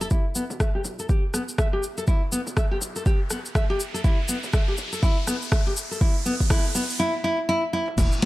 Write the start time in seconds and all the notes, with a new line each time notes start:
Already playing: swell
0.01 A4, cabasa
0.10 E1 E4, kick, riser, cabasa
0.35 B3, cabasa
0.50 E1, mid tom, cabasa
0.60 E5, kick, cross-stick, cabasa
0.75 G4
0.84 B1, mid tom, cabasa
0.99 A4, cabasa
1.09 G4, kick, cabasa
1.34 E1 B3, cross-stick, cabasa
1.48 cabasa
1.58 E5, kick, cross-stick, cabasa
1.73 E1 G4
1.83 cabasa
1.98 A4, cabasa
2.07 E1 E4, kick, cabasa
2.32 B3, cabasa
2.47 E1, mid tom, cabasa
2.57 E5, kick, cross-stick, cabasa
2.71 G4
2.81 B1, mid tom, cabasa
2.96 A4, cabasa
3.06 G4, kick, cabasa
3.30 E1 B3, cross-stick, cabasa
3.45 cabasa
3.55 E5, kick, cross-stick, cabasa
3.70 E1 G4
3.80 cabasa
3.94 A4, cabasa
4.04 E1 E4, kick, cabasa
4.28 B3, cabasa
4.43 E1, mid tom, cabasa
4.53 E5, kick, cross-stick, cabasa
4.68 G4
4.77 B1, mid tom, cabasa
4.93 A4, cabasa
5.03 E4, kick, cabasa
5.27 E1 B3, cross-stick, cabasa
5.42 cabasa
5.52 E5, kick, cross-stick, cabasa
5.67 E1 G4
5.76 cabasa
5.91 A4, cabasa
6.01 E4, kick, cabasa
6.26 B3, cabasa
6.40 kick, mid tom, cabasa
6.50 E4, kick, cross-stick, cabasa
6.75 B1 B3, mid tom, cabasa
6.90 cabasa
7.00 E4
7.24 E4
7.49 E4
7.73 E4, high tom
7.88 mid tom
7.98 E1 E4, kick, crash, downlifter, muted conga, cabasa
8.12 cabasa